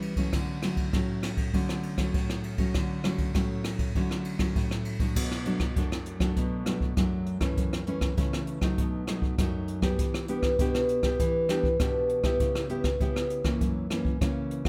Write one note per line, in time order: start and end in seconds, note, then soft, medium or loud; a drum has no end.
0.00 0.30 E3 medium
0.00 0.13 G3 medium
0.00 0.13 C#4 medium
0.00 0.13 E4 medium
0.00 ride soft
0.16 0.58 F#3 medium
0.16 0.58 A3 medium
0.16 0.58 C#4 medium
0.16 kick medium
0.16 ride soft
0.33 0.91 D3 medium
0.33 kick medium
0.33 cross-stick medium
0.33 ride soft
0.62 0.89 F#3 medium
0.62 0.89 A3 medium
0.62 0.89 C#4 medium
0.62 cross-stick medium
0.62 ride soft
0.77 kick medium
0.77 ride soft
0.93 1.51 A2 medium
0.93 1.49 F#3 medium
0.93 1.50 A3 soft
0.93 1.50 C#4 medium
0.93 kick medium
0.93 cross-stick medium
0.93 ride soft
1.23 cross-stick medium
1.23 ride soft
1.37 kick medium
1.37 ride soft
1.54 2.11 D3 medium
1.54 1.94 F#3 medium
1.54 1.95 A3 medium
1.54 1.95 C#4 medium
1.54 kick medium
1.54 ride soft
1.69 cross-stick medium
1.83 ride soft
1.98 2.54 F#3 medium
1.98 2.55 A3 medium
1.98 2.55 C#4 medium
1.98 kick medium
1.98 cross-stick medium
1.98 ride soft
2.14 2.72 A2 medium
2.14 kick medium
2.14 ride soft
2.30 cross-stick medium
2.44 ride soft
2.58 3.00 F#3 medium
2.58 3.00 A3 medium
2.58 3.00 C#4 medium
2.58 kick medium
2.58 ride soft
2.74 3.32 D3 medium
2.74 kick medium
2.74 cross-stick medium
2.74 ride soft
3.04 3.30 F#3 soft
3.04 3.30 A3 soft
3.04 3.31 C#4 medium
3.04 cross-stick medium
3.04 ride soft
3.18 kick medium
3.18 ride soft
3.35 3.93 A2 medium
3.35 3.91 F#3 medium
3.35 3.91 A3 medium
3.35 3.91 C#4 medium
3.35 kick medium
3.35 cross-stick medium
3.35 ride soft
3.64 cross-stick medium
3.64 ride soft
3.79 kick medium
3.79 ride soft
3.95 4.53 D3 medium
3.95 4.36 F#3 medium
3.95 4.36 A3 soft
3.95 4.36 C#4 medium
3.95 kick medium
3.95 ride soft
4.11 cross-stick medium
4.25 ride soft
4.39 4.96 F#3 medium
4.39 4.96 A3 medium
4.39 4.96 C#4 medium
4.39 kick medium
4.39 cross-stick medium
4.39 ride soft
4.56 5.13 A2 medium
4.56 kick medium
4.56 ride soft
4.71 cross-stick medium
4.85 ride soft
5.00 5.41 F#3 soft
5.00 5.41 A3 soft
5.00 5.41 D4 medium
5.00 kick medium
5.00 ride soft
5.16 5.73 B2 medium
5.16 kick medium
5.16 crash medium
5.31 cross-stick medium
5.45 5.64 F#3 medium
5.45 5.64 A3 medium
5.45 5.64 D4 medium
5.45 closed hi-hat soft
5.60 kick medium
5.60 cross-stick medium
5.76 6.34 F#2 medium
5.76 6.17 F#3 medium
5.76 6.17 A3 soft
5.76 6.18 D4 medium
5.76 kick medium
5.76 closed hi-hat medium
5.92 cross-stick medium
5.92 closed hi-hat soft
6.06 closed hi-hat soft
6.20 6.62 F#3 medium
6.20 6.62 A3 medium
6.20 6.62 D4 medium
6.20 kick medium
6.20 cross-stick medium
6.20 closed hi-hat soft
6.36 6.94 B2 medium
6.36 kick medium
6.36 closed hi-hat medium
6.66 6.92 F#3 medium
6.66 6.92 A3 medium
6.66 6.92 D4 medium
6.66 cross-stick medium
6.66 closed hi-hat soft
6.81 kick medium
6.97 7.55 F#2 medium
6.97 7.38 F#3 medium
6.97 7.38 A3 soft
6.97 7.38 D4 medium
6.97 kick medium
6.97 cross-stick medium
6.97 closed hi-hat medium
7.26 closed hi-hat soft
7.41 7.82 E3 medium
7.41 7.82 A3 medium
7.41 7.82 C#4 medium
7.41 kick medium
7.41 cross-stick medium
7.57 8.15 F#2 medium
7.57 kick medium
7.57 closed hi-hat medium
7.73 cross-stick medium
7.73 closed hi-hat soft
7.87 8.13 E3 medium
7.87 8.13 A3 medium
7.87 8.13 C#4 medium
7.87 closed hi-hat soft
8.01 kick medium
8.01 cross-stick medium
8.17 8.75 C#3 medium
8.17 8.58 E3 medium
8.17 8.58 A3 medium
8.17 8.58 C#4 medium
8.17 kick medium
8.17 closed hi-hat medium
8.33 cross-stick medium
8.47 closed hi-hat soft
8.61 9.03 F#3 medium
8.61 9.03 A3 medium
8.61 9.03 D#4 medium
8.61 kick medium
8.61 cross-stick medium
8.78 9.35 B2 medium
8.78 kick medium
8.78 closed hi-hat medium
9.07 9.33 F#3 medium
9.07 9.34 A3 medium
9.07 9.34 D#4 medium
9.07 cross-stick medium
9.07 closed hi-hat soft
9.22 kick medium
9.38 9.96 F#2 medium
9.38 9.79 F#3 medium
9.38 9.79 A3 medium
9.38 9.80 D#4 medium
9.38 kick medium
9.38 cross-stick medium
9.38 closed hi-hat medium
9.68 closed hi-hat soft
9.82 10.23 B3 medium
9.82 10.24 D4 medium
9.82 10.24 G4 medium
9.82 kick medium
9.82 cross-stick medium
9.99 10.56 E3 medium
9.99 kick medium
9.99 closed hi-hat medium
10.14 cross-stick medium
10.28 10.54 B3 medium
10.28 10.54 D4 medium
10.28 10.55 G4 medium
10.28 closed hi-hat soft
10.43 kick medium
10.43 cross-stick medium
10.59 11.17 B2 medium
10.59 11.00 B3 medium
10.59 11.00 D4 medium
10.59 11.00 G4 medium
10.59 kick medium
10.59 closed hi-hat medium
10.75 cross-stick medium
10.75 closed hi-hat soft
10.89 closed hi-hat soft
11.03 11.44 B3 medium
11.03 11.44 D4 medium
11.03 11.45 G4 medium
11.03 kick medium
11.03 cross-stick medium
11.03 closed hi-hat soft
11.19 11.77 E3 medium
11.19 kick medium
11.19 closed hi-hat medium
11.49 11.67 B3 medium
11.49 11.67 D4 medium
11.49 11.68 G4 medium
11.49 cross-stick medium
11.49 closed hi-hat soft
11.63 kick medium
11.80 12.37 B2 medium
11.80 12.20 B3 medium
11.80 12.20 D4 medium
11.80 12.21 G4 medium
11.80 kick medium
11.80 cross-stick medium
11.80 closed hi-hat medium
12.09 closed hi-hat soft
12.24 12.65 B3 medium
12.24 12.65 E4 medium
12.24 12.65 G4 medium
12.24 kick medium
12.24 cross-stick medium
12.40 12.97 C#3 medium
12.40 kick medium
12.40 closed hi-hat medium
12.55 cross-stick medium
12.55 closed hi-hat soft
12.69 12.88 B3 medium
12.69 12.88 E4 medium
12.69 12.88 G4 medium
12.69 closed hi-hat soft
12.84 kick medium
12.84 cross-stick medium
13.00 13.58 C#3 medium
13.00 13.41 B3 medium
13.00 13.41 E4 medium
13.00 13.41 G4 medium
13.00 kick medium
13.00 closed hi-hat medium
13.16 cross-stick medium
13.30 closed hi-hat soft
13.44 13.85 E3 medium
13.44 13.86 A#3 medium
13.44 13.86 C#4 medium
13.44 kick medium
13.44 cross-stick medium
13.61 14.18 F#2 medium
13.61 kick medium
13.61 closed hi-hat medium
13.90 14.16 E3 soft
13.90 14.16 A#3 medium
13.90 14.17 C#4 medium
13.90 cross-stick medium
13.90 closed hi-hat soft
14.05 kick medium
14.21 14.69 C#3 medium
14.21 14.62 E3 soft
14.21 14.62 A#3 medium
14.21 14.62 C#4 medium
14.21 kick medium
14.21 cross-stick medium
14.21 closed hi-hat medium
14.51 closed hi-hat soft
14.65 kick medium
14.65 cross-stick medium